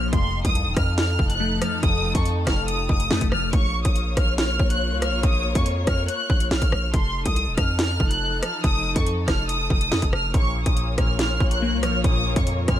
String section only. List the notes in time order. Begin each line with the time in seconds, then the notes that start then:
0.13 F3 D#4 A4
3.53 A#3 F4 C#5
6.94 F3 D#4 A4
10.34 A#3 F4 C#5